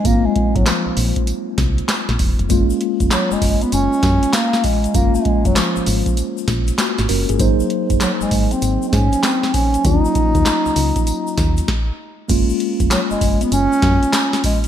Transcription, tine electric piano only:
X:1
M:4/4
L:1/16
Q:"Swing 16ths" 1/4=98
K:Gb
V:1 name="Tine electric piano"
z16 | z16 | z12 [B,G]2 [DB] A- | A z12 z3 |
z16 | z16 |]
V:2 name="Tine electric piano"
[A,B,=CF]16 | [A,B,DF]16 | [A,B,DF]16 | [G,B,E=c]16 |
[G,B,DF]12 z4 | [A,B,DF]16 |]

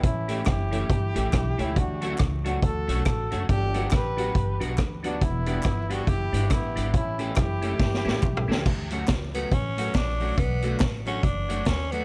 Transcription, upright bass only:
X:1
M:4/4
L:1/8
Q:"Swing" 1/4=139
K:D
V:1 name="Upright bass" clef=bass
A,,,2 F,,,2 G,,, A,,, B,,, C,, | D,,2 C,,2 D,, B,,, A,,, F,,, | G,,,2 A,,,2 G,,, B,,, D,,2 | E,,,2 G,,,2 F,,, G,,, A,,, ^G,,, |
A,,,2 F,,,2 G,,, A,,, B,,, C,, | D,,2 C,,2 A,,,2 _B,,,2 | B,,,2 A,,,2 F,,,2 _E,,2 |]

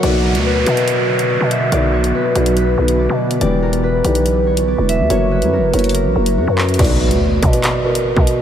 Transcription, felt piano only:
X:1
M:4/4
L:1/16
Q:1/4=142
K:Bm
V:1 name="Felt piano"
[B,,B,Fd]4 z2 [B,,B,Fe]4- [B,,B,Fe] z4 z | [B,,B,Fd]4 z2 [B,,B,Fd]4- [B,,B,Fd] z4 z | [E,B,Gd]4 z2 [E,B,Gd]4- [E,B,Gd] z4 z | [F,F^Ac]4 z2 [F,FAc]4- [F,FAc] z4 z |
[B,,B,Fd]4- [B,,B,Fd] z2 [B,,B,Fd]2 z [B,,B,F^A]4 z2 |]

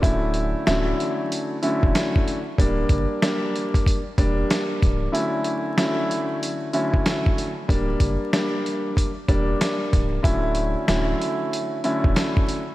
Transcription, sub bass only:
X:1
M:4/4
L:1/16
Q:"Swing 16ths" 1/4=94
K:D
V:1 name="Sub bass" clef=bass
D,,,4 D,,,2 z4 z E,,, z4 | D,,,2 F,,, z6 z E,,,2 z2 C,,,2 | z16 | D,,,2 F,,, z6 z E,,,2 z2 C,,,2 |
D,,,4 D,,,2 z4 z E,,, z4 |]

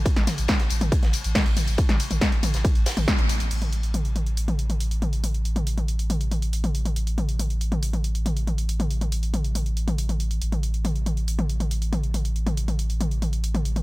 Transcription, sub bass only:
X:1
M:4/4
L:1/16
Q:1/4=139
K:Cmix
V:1 name="Sub bass" clef=bass
z A,,, z A,,, z2 A,,, A,,, z A,,, z A,,, z A,,, A,,, A,,, | z A,,, z A,,, z2 A,,, A,,, z A,,, z A,,, z A,,, A,,, A,,, | A,,,16- | A,,,16- |
A,,,16- | A,,,16 | A,,,16- | A,,,16 |]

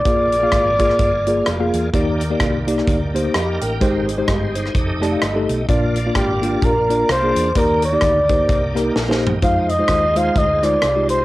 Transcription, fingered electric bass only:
X:1
M:4/4
L:1/8
Q:"Swing" 1/4=128
K:Eb
V:1 name="Fingered electric bass" clef=bass
B,,,2 A,,,2 G,,,2 F,,, _F,, | E,,2 C,,2 D,,2 F,, =A,,, | A,,,2 G,,,2 F,,,2 G,,, _C,, | B,,,2 A,,,2 B,,,2 C,, _F,, |
E,,2 D,,2 C,,2 B,,,2 | F,,2 E,,2 D,,2 C,,2 |]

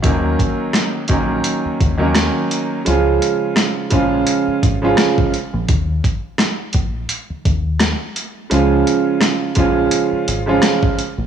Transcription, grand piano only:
X:1
M:4/4
L:1/16
Q:"Swing 16ths" 1/4=85
K:Ebm
V:1 name="Grand piano" clef=bass
[E,G,B,DE]6 [E,G,B,DE]4- [E,G,B,DE] [E,G,B,DE]4- [E,G,B,DE] | [D,F,A,DF]6 [D,F,A,DF]4- [D,F,A,DF] [D,F,A,DF]3 z2 | z16 | [D,F,A,DF]6 [D,F,A,DF]4- [D,F,A,DF] [D,F,A,DF]3 z2 |]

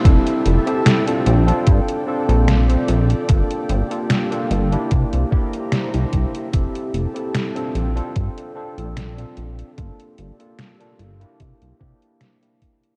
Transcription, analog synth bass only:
X:1
M:4/4
L:1/16
Q:"Swing 16ths" 1/4=74
K:F
V:1 name="Analog synth bass" clef=bass
F,,, z F,,, z3 B,,, z G,, z2 B,,,2 z B,,, z | G,,, z G,,, z3 G,,, z C, C,, z3 C,, C,, z | F,,, z F,,, z3 B,,, z G,, z2 B,,,2 z B,,, z | G,,, z G,,, z3 G,,, z C, C,, C, z4 z |]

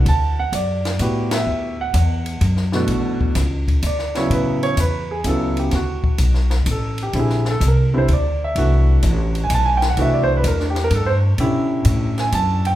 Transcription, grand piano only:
X:1
M:3/4
L:1/16
Q:"Swing" 1/4=127
K:Bm
V:1 name="Grand piano"
[fa]2 f2 d6 e2- | e2 f6 z4 | z8 d2 c2 | B2 c2 B2 ^G2 A2 =G2 |
F6 z2 A2 G2 | ^G2 A2 ^A2 ^B2 d2 e2- | e2 z4 z ^g a g =g f | e d =c B ^A D G A =A c z2 |
z6 ^g2 a2 =g2 |]
V:2 name="Grand piano"
z8 [B,EFG]4- | [B,EFG]2 z8 [B,,E,A,DF]2- | [B,,E,A,DF]4 z6 [C,F,B,E]2- | [C,F,B,E]4 z4 [C,F,B,E]4 |
z12 | [D,G,^B,E]2 z4 [D,G,B,E]2 z4 | [E,A,DF]8- [E,A,DF]2 z2 | [E,A,DF]8- [E,A,DF]2 z2 |
[D,CEG]8- [D,CEG]2 z2 |]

